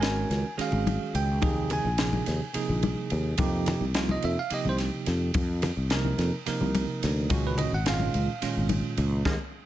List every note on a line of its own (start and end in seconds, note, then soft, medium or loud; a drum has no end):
0.00 0.24 G#1 medium
0.00 0.45 D#3 medium
0.00 0.45 G#3 medium
0.00 0.45 C#4 medium
0.00 0.45 F#4 medium
0.00 0.45 A#4 medium
0.00 0.55 G#5 medium
0.00 snare loud
0.00 ride medium
0.30 0.42 C#2 medium
0.30 snare soft
0.30 ride medium
0.30 low conga soft
0.57 1.42 D#3 medium
0.57 1.42 G#3 medium
0.57 1.42 C#4 medium
0.57 1.42 F#4 medium
0.57 1.41 G#4 medium
0.57 muted fretless electric bass stroke soft
0.57 snare soft
0.57 ride medium
0.61 1.12 F5 medium
0.72 0.96 G#1 medium
0.72 low conga medium
0.87 ride medium
0.87 high conga medium
1.01 low conga soft
1.14 1.38 C#2 medium
1.14 1.67 G5 medium
1.14 ride medium
1.14 low conga soft
1.41 1.78 D#2 medium
1.41 1.87 C3 medium
1.41 1.87 F3 medium
1.41 1.87 A#3 medium
1.41 1.87 D#4 medium
1.41 1.87 G#4 medium
1.41 kick loud
1.41 ride medium
1.41 high conga medium
1.70 2.52 G#5 medium
1.70 ride medium
1.70 low conga medium
1.85 2.20 A#1 medium
1.98 2.41 C3 medium
1.98 2.42 F3 medium
1.98 2.42 A#3 medium
1.98 2.42 D#4 medium
1.98 2.42 G#4 medium
1.98 snare loud
1.98 ride medium
2.13 high conga medium
2.13 low conga soft
2.26 2.39 D#2 medium
2.26 snare soft
2.26 ride medium
2.42 low conga soft
2.54 3.36 C3 medium
2.54 3.38 F3 medium
2.54 3.37 A#3 medium
2.54 3.38 D#4 medium
2.54 3.39 G#4 medium
2.54 muted fretless electric bass stroke soft
2.54 ride medium
2.69 2.93 A#1 medium
2.69 low conga medium
2.83 ride medium
2.83 high conga loud
3.10 3.35 D#2 loud
3.10 ride medium
3.10 low conga soft
3.38 3.74 F2 medium
3.38 3.83 C3 medium
3.38 3.84 F3 medium
3.38 3.83 A#3 medium
3.38 3.84 D#4 medium
3.38 3.84 G4 loud
3.38 kick loud
3.38 ride medium
3.38 high conga loud
3.66 snare soft
3.66 ride medium
3.66 low conga loud
3.81 4.16 C2 medium
3.94 4.37 C3 medium
3.94 4.38 F3 medium
3.94 4.38 A#3 medium
3.94 4.38 D#4 medium
3.94 4.38 F4 medium
3.94 snare loud
3.94 ride medium
4.09 4.24 D#5 medium
4.09 high conga medium
4.22 4.35 F2 medium
4.22 4.37 E5 medium
4.22 ride medium
4.22 low conga soft
4.39 4.52 F5 medium
4.50 5.37 C3 medium
4.50 5.37 F3 medium
4.50 5.37 A#3 medium
4.50 5.37 D#4 medium
4.50 5.37 G4 medium
4.50 4.66 D#5 medium
4.50 muted fretless electric bass stroke soft
4.50 ride medium
4.65 4.89 C2 medium
4.65 low conga medium
4.69 4.76 C5 medium
4.78 snare soft
4.78 ride medium
4.93 low conga soft
5.06 5.30 F2 loud
5.06 snare soft
5.06 ride medium
5.06 low conga soft
5.34 5.70 F2 medium
5.34 kick loud
5.34 ride medium
5.34 high conga loud
5.62 snare soft
5.62 ride medium
5.62 low conga loud
5.77 6.12 C2 medium
5.90 6.33 C3 medium
5.90 6.34 F3 medium
5.90 6.34 A#3 medium
5.90 6.34 D#4 medium
5.90 6.34 A#4 medium
5.90 snare loud
5.90 ride medium
6.05 high conga medium
6.18 6.30 F2 medium
6.18 snare soft
6.18 ride medium
6.18 low conga soft
6.46 7.30 C3 medium
6.46 7.30 F3 medium
6.46 7.30 A#3 medium
6.46 7.30 D#4 medium
6.46 7.31 A#4 medium
6.46 muted fretless electric bass stroke soft
6.46 snare soft
6.46 ride medium
6.61 6.84 C2 medium
6.61 low conga medium
6.75 ride medium
6.75 high conga medium
6.89 low conga soft
7.02 7.27 D2 loud
7.02 snare soft
7.02 ride medium
7.02 low conga soft
7.30 7.66 C#2 loud
7.30 7.75 A#2 medium
7.30 7.75 D#3 medium
7.30 7.75 G#3 medium
7.30 7.75 C#4 medium
7.30 7.75 F#4 medium
7.30 kick loud
7.30 ride medium
7.30 high conga loud
7.47 7.59 B4 medium
7.58 7.72 D#5 medium
7.58 ride medium
7.58 low conga medium
7.72 8.08 G#1 medium
7.72 7.87 F#5 loud
7.85 8.29 A#2 medium
7.85 8.29 D#3 medium
7.85 8.29 G#3 medium
7.85 8.29 C#4 medium
7.85 8.29 F4 medium
7.85 8.67 F5 medium
7.85 snare loud
7.85 ride medium
8.00 high conga medium
8.14 8.26 C#2 medium
8.14 ride medium
8.14 low conga soft
8.42 9.26 A#2 medium
8.42 9.25 D#3 medium
8.42 9.24 G#3 medium
8.42 9.26 C#4 medium
8.42 9.26 F4 medium
8.42 muted fretless electric bass stroke soft
8.42 snare soft
8.42 ride medium
8.57 8.80 G#1 medium
8.69 ride medium
8.69 high conga medium
8.84 low conga soft
8.97 9.21 C#2 loud
8.97 ride medium
9.25 9.36 D#2 loud
9.25 9.35 D#3 loud
9.25 9.35 G#3 loud
9.25 9.35 A#3 loud
9.25 kick medium
9.25 snare medium
9.25 high conga medium